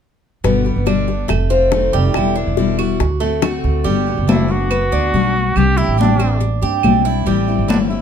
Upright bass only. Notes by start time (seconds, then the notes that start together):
0.44 G1
0.76 G1
1.30 F1
1.94 F1
2.15 E1
2.47 E1
3.00 D2
3.64 D2
3.85 G1
4.17 F#1
4.92 D2
5.14 B1
5.56 C2
5.88 A1
6.63 G2
6.84 B1
7.27 A1
7.59 G1